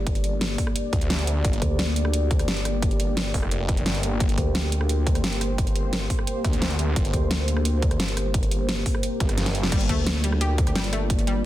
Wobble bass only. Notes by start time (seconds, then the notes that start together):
Already playing: G1
1.62 D2
2.48 G1
4.38 D2
5.24 G1
7.13 D2
8.00 G1
9.89 D2
10.75 G1